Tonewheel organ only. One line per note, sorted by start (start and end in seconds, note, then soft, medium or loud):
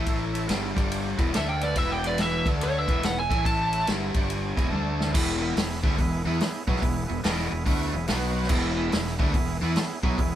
0.00 0.25 A3 medium
0.00 0.25 E4 medium
0.00 0.25 A4 loud
0.33 0.46 A3 loud
0.33 0.46 E4 medium
0.33 0.46 A4 loud
0.48 0.71 B3 medium
0.48 0.72 E4 medium
0.48 0.72 G#4 medium
0.75 1.09 G3 medium
0.75 1.09 D4 medium
0.75 1.09 G4 loud
1.17 1.31 B3 medium
1.17 1.31 E4 medium
1.17 1.31 G#4 loud
1.33 1.57 A3 loud
1.33 1.56 D4 medium
1.33 1.57 A4 loud
1.62 1.74 A3 medium
1.62 1.74 D4 medium
1.62 1.75 A4 medium
1.77 1.99 B3 medium
1.77 2.00 E4 medium
1.77 2.00 G#4 loud
2.06 2.17 B3 medium
2.06 2.18 E4 medium
2.06 2.18 G#4 loud
2.21 2.43 B3 medium
2.21 2.43 E4 medium
2.21 2.43 G#4 medium
2.47 2.80 A3 medium
2.47 2.80 D4 medium
2.47 2.81 A4 medium
2.89 3.22 B3 medium
2.89 3.22 E4 medium
2.89 3.22 G#4 medium
3.29 3.63 A3 medium
3.29 3.64 E4 medium
3.29 3.64 A4 medium
3.74 3.86 A3 medium
3.74 3.86 E4 medium
3.74 3.86 B4 medium
3.88 4.11 B3 medium
3.88 4.11 E4 medium
3.88 4.11 G#4 medium
4.16 4.49 G3 medium
4.16 4.49 D4 medium
4.16 4.49 G4 medium
4.16 4.30 F#5 medium
4.30 4.70 G#5 medium
4.56 4.69 B3 medium
4.56 4.69 E4 medium
4.56 4.69 G#4 medium
4.69 4.93 A3 loud
4.69 4.94 D4 medium
4.69 4.94 A4 loud
4.69 5.10 A5 medium
4.97 5.11 A3 medium
4.97 5.11 D4 medium
4.97 5.12 A4 loud
5.12 5.36 B3 loud
5.12 5.36 E4 loud
5.12 5.37 G#4 loud
5.41 5.54 B3 medium
5.41 5.54 E4 medium
5.41 5.54 G#4 medium
5.56 5.79 B3 medium
5.56 5.79 E4 medium
5.56 5.80 G#4 loud
5.84 5.97 B3 medium
5.84 5.97 E4 medium
5.84 5.97 G#4 medium
6.00 6.22 B3 loud
6.00 6.23 E4 loud
6.00 6.23 G#4 loud
6.26 6.38 B3 medium
6.26 6.39 E4 medium
6.26 6.39 G#4 loud
6.39 6.63 B3 medium
6.39 6.63 E4 medium
6.39 6.64 G#4 loud
6.67 6.78 B3 loud
6.67 6.80 E4 medium
6.67 6.79 G#4 loud
6.80 7.04 B3 loud
6.80 7.05 E4 medium
6.80 7.04 G#4 loud
7.07 7.21 B3 medium
7.07 7.21 E4 medium
7.07 7.21 G#4 medium
7.23 7.47 B3 medium
7.23 7.48 E4 medium
7.23 7.47 G#4 loud
7.51 7.64 B3 medium
7.51 7.64 E4 medium
7.51 7.64 G#4 medium
7.66 7.89 B3 loud
7.66 7.90 E4 loud
7.66 7.90 F#4 loud
7.93 8.06 B3 medium
7.93 8.06 E4 medium
7.93 8.06 G#4 loud
8.09 8.32 B3 medium
8.09 8.32 F#4 medium
8.09 8.32 B4 loud
8.34 8.47 B3 loud
8.34 8.48 F#4 medium
8.34 8.48 B4 loud
8.48 8.72 B3 loud
8.48 8.73 E4 loud
8.48 8.72 G#4 loud
8.77 8.90 B3 medium
8.77 8.90 E4 medium
8.77 8.90 G#4 medium
8.91 9.15 B3 loud
8.91 9.15 E4 medium
8.91 9.15 G#4 loud
9.19 9.32 B3 medium
9.19 9.32 E4 medium
9.19 9.32 G#4 medium
9.34 9.57 B3 loud
9.34 9.57 E4 loud
9.34 9.57 G#4 loud
9.63 9.74 B3 medium
9.63 9.75 E4 medium
9.63 9.75 G#4 loud
9.75 9.99 B3 medium
9.75 9.99 E4 medium
9.75 9.99 G#4 loud
10.03 10.15 B3 loud
10.03 10.16 E4 medium
10.03 10.16 G#4 loud
10.17 10.35 B3 loud
10.17 10.35 E4 loud
10.17 10.35 G#4 loud